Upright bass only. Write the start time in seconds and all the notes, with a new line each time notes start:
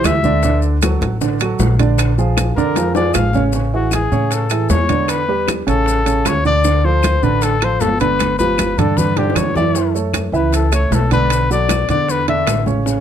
0.03 D2
1.01 A1
1.59 A#1
2.56 F2
3.14 A1
4.12 A2
4.69 E2
5.67 A1
6.26 D2
7.22 A1
7.81 G1
8.78 G2
9.35 F#2
10.32 C#2
10.91 B1
11.88 E2
12.47 A1